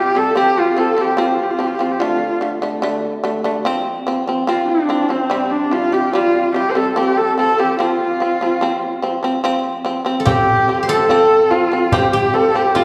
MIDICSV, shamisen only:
0, 0, Header, 1, 2, 480
1, 0, Start_track
1, 0, Tempo, 826446
1, 201, Time_signature, 4, 2, 24, 8
1, 7459, End_track
2, 0, Start_track
2, 0, Title_t, "Shamisen"
2, 0, Program_c, 0, 106
2, 0, Note_on_c, 0, 48, 70
2, 0, Note_on_c, 0, 55, 69
2, 62, Note_off_c, 0, 48, 0
2, 65, Note_off_c, 0, 55, 0
2, 87, Note_on_c, 0, 48, 61
2, 95, Note_on_c, 0, 55, 68
2, 180, Note_off_c, 0, 48, 0
2, 184, Note_off_c, 0, 55, 0
2, 206, Note_on_c, 0, 53, 83
2, 214, Note_on_c, 0, 60, 88
2, 395, Note_off_c, 0, 53, 0
2, 399, Note_off_c, 0, 60, 0
2, 444, Note_on_c, 0, 53, 64
2, 451, Note_on_c, 0, 60, 70
2, 538, Note_off_c, 0, 53, 0
2, 542, Note_off_c, 0, 60, 0
2, 561, Note_on_c, 0, 53, 63
2, 567, Note_on_c, 0, 60, 72
2, 657, Note_off_c, 0, 53, 0
2, 660, Note_off_c, 0, 60, 0
2, 679, Note_on_c, 0, 53, 85
2, 687, Note_on_c, 0, 60, 98
2, 872, Note_off_c, 0, 53, 0
2, 875, Note_off_c, 0, 60, 0
2, 921, Note_on_c, 0, 53, 68
2, 929, Note_on_c, 0, 60, 71
2, 1017, Note_off_c, 0, 53, 0
2, 1020, Note_off_c, 0, 60, 0
2, 1041, Note_on_c, 0, 53, 65
2, 1048, Note_on_c, 0, 60, 70
2, 1136, Note_off_c, 0, 53, 0
2, 1140, Note_off_c, 0, 60, 0
2, 1162, Note_on_c, 0, 50, 88
2, 1171, Note_on_c, 0, 57, 90
2, 1353, Note_off_c, 0, 50, 0
2, 1357, Note_off_c, 0, 57, 0
2, 1400, Note_on_c, 0, 50, 65
2, 1407, Note_on_c, 0, 57, 65
2, 1496, Note_off_c, 0, 50, 0
2, 1499, Note_off_c, 0, 57, 0
2, 1522, Note_on_c, 0, 50, 72
2, 1529, Note_on_c, 0, 57, 79
2, 1617, Note_off_c, 0, 50, 0
2, 1620, Note_off_c, 0, 57, 0
2, 1639, Note_on_c, 0, 50, 96
2, 1646, Note_on_c, 0, 57, 111
2, 1831, Note_off_c, 0, 50, 0
2, 1835, Note_off_c, 0, 57, 0
2, 1879, Note_on_c, 0, 50, 81
2, 1886, Note_on_c, 0, 57, 88
2, 1976, Note_off_c, 0, 50, 0
2, 1979, Note_off_c, 0, 57, 0
2, 2000, Note_on_c, 0, 50, 75
2, 2006, Note_on_c, 0, 57, 90
2, 2096, Note_off_c, 0, 50, 0
2, 2099, Note_off_c, 0, 57, 0
2, 2120, Note_on_c, 0, 53, 95
2, 2127, Note_on_c, 0, 60, 109
2, 2312, Note_off_c, 0, 53, 0
2, 2315, Note_off_c, 0, 60, 0
2, 2362, Note_on_c, 0, 53, 78
2, 2369, Note_on_c, 0, 60, 84
2, 2457, Note_off_c, 0, 53, 0
2, 2460, Note_off_c, 0, 60, 0
2, 2483, Note_on_c, 0, 53, 63
2, 2490, Note_on_c, 0, 60, 76
2, 2577, Note_off_c, 0, 53, 0
2, 2581, Note_off_c, 0, 60, 0
2, 2598, Note_on_c, 0, 53, 84
2, 2606, Note_on_c, 0, 60, 94
2, 2791, Note_off_c, 0, 53, 0
2, 2795, Note_off_c, 0, 60, 0
2, 2839, Note_on_c, 0, 53, 68
2, 2845, Note_on_c, 0, 60, 78
2, 2936, Note_off_c, 0, 53, 0
2, 2938, Note_off_c, 0, 60, 0
2, 2955, Note_on_c, 0, 53, 60
2, 2963, Note_on_c, 0, 60, 72
2, 3053, Note_off_c, 0, 53, 0
2, 3057, Note_off_c, 0, 60, 0
2, 3077, Note_on_c, 0, 48, 87
2, 3084, Note_on_c, 0, 55, 99
2, 3270, Note_off_c, 0, 48, 0
2, 3274, Note_off_c, 0, 55, 0
2, 3319, Note_on_c, 0, 48, 64
2, 3326, Note_on_c, 0, 55, 67
2, 3416, Note_off_c, 0, 48, 0
2, 3419, Note_off_c, 0, 55, 0
2, 3440, Note_on_c, 0, 48, 62
2, 3449, Note_on_c, 0, 55, 65
2, 3536, Note_off_c, 0, 48, 0
2, 3541, Note_off_c, 0, 55, 0
2, 3563, Note_on_c, 0, 48, 80
2, 3572, Note_on_c, 0, 55, 99
2, 3754, Note_off_c, 0, 48, 0
2, 3758, Note_off_c, 0, 55, 0
2, 3801, Note_on_c, 0, 48, 72
2, 3810, Note_on_c, 0, 55, 78
2, 3897, Note_off_c, 0, 48, 0
2, 3901, Note_off_c, 0, 55, 0
2, 3922, Note_on_c, 0, 48, 70
2, 3929, Note_on_c, 0, 55, 70
2, 4017, Note_off_c, 0, 48, 0
2, 4021, Note_off_c, 0, 55, 0
2, 4043, Note_on_c, 0, 53, 86
2, 4050, Note_on_c, 0, 60, 92
2, 4234, Note_off_c, 0, 53, 0
2, 4238, Note_off_c, 0, 60, 0
2, 4284, Note_on_c, 0, 53, 65
2, 4292, Note_on_c, 0, 60, 71
2, 4379, Note_off_c, 0, 53, 0
2, 4383, Note_off_c, 0, 60, 0
2, 4405, Note_on_c, 0, 53, 64
2, 4411, Note_on_c, 0, 60, 67
2, 4499, Note_off_c, 0, 53, 0
2, 4502, Note_off_c, 0, 60, 0
2, 4523, Note_on_c, 0, 53, 81
2, 4530, Note_on_c, 0, 60, 96
2, 4714, Note_off_c, 0, 53, 0
2, 4718, Note_off_c, 0, 60, 0
2, 4765, Note_on_c, 0, 53, 63
2, 4773, Note_on_c, 0, 60, 67
2, 4859, Note_off_c, 0, 53, 0
2, 4863, Note_off_c, 0, 60, 0
2, 4886, Note_on_c, 0, 53, 64
2, 4893, Note_on_c, 0, 60, 73
2, 4980, Note_off_c, 0, 53, 0
2, 4983, Note_off_c, 0, 60, 0
2, 5002, Note_on_c, 0, 53, 81
2, 5009, Note_on_c, 0, 60, 91
2, 5194, Note_off_c, 0, 53, 0
2, 5198, Note_off_c, 0, 60, 0
2, 5242, Note_on_c, 0, 53, 72
2, 5247, Note_on_c, 0, 60, 76
2, 5338, Note_off_c, 0, 53, 0
2, 5341, Note_off_c, 0, 60, 0
2, 5359, Note_on_c, 0, 53, 66
2, 5367, Note_on_c, 0, 60, 81
2, 5457, Note_off_c, 0, 53, 0
2, 5461, Note_off_c, 0, 60, 0
2, 5481, Note_on_c, 0, 53, 92
2, 5487, Note_on_c, 0, 60, 104
2, 5674, Note_off_c, 0, 53, 0
2, 5677, Note_off_c, 0, 60, 0
2, 5718, Note_on_c, 0, 53, 77
2, 5725, Note_on_c, 0, 60, 83
2, 5816, Note_off_c, 0, 53, 0
2, 5820, Note_off_c, 0, 60, 0
2, 5835, Note_on_c, 0, 53, 71
2, 5842, Note_on_c, 0, 60, 79
2, 5935, Note_off_c, 0, 53, 0
2, 5938, Note_off_c, 0, 60, 0
2, 5956, Note_on_c, 0, 53, 87
2, 5964, Note_on_c, 0, 60, 99
2, 6151, Note_off_c, 0, 53, 0
2, 6156, Note_off_c, 0, 60, 0
2, 6203, Note_on_c, 0, 53, 67
2, 6209, Note_on_c, 0, 60, 77
2, 6299, Note_off_c, 0, 53, 0
2, 6302, Note_off_c, 0, 60, 0
2, 6322, Note_on_c, 0, 53, 73
2, 6329, Note_on_c, 0, 60, 76
2, 6418, Note_off_c, 0, 53, 0
2, 6422, Note_off_c, 0, 60, 0
2, 6443, Note_on_c, 0, 53, 83
2, 6449, Note_on_c, 0, 60, 95
2, 6635, Note_off_c, 0, 53, 0
2, 6638, Note_off_c, 0, 60, 0
2, 6685, Note_on_c, 0, 53, 68
2, 6691, Note_on_c, 0, 60, 76
2, 6780, Note_off_c, 0, 53, 0
2, 6783, Note_off_c, 0, 60, 0
2, 6805, Note_on_c, 0, 53, 64
2, 6813, Note_on_c, 0, 60, 73
2, 6900, Note_off_c, 0, 53, 0
2, 6904, Note_off_c, 0, 60, 0
2, 6928, Note_on_c, 0, 53, 90
2, 6934, Note_on_c, 0, 60, 98
2, 7117, Note_off_c, 0, 53, 0
2, 7121, Note_off_c, 0, 60, 0
2, 7165, Note_on_c, 0, 53, 67
2, 7174, Note_on_c, 0, 60, 73
2, 7260, Note_off_c, 0, 53, 0
2, 7264, Note_off_c, 0, 60, 0
2, 7286, Note_on_c, 0, 53, 69
2, 7292, Note_on_c, 0, 60, 71
2, 7380, Note_off_c, 0, 53, 0
2, 7383, Note_off_c, 0, 60, 0
2, 7405, Note_on_c, 0, 53, 88
2, 7412, Note_on_c, 0, 60, 89
2, 7459, Note_off_c, 0, 53, 0
2, 7459, Note_off_c, 0, 60, 0
2, 7459, End_track
0, 0, End_of_file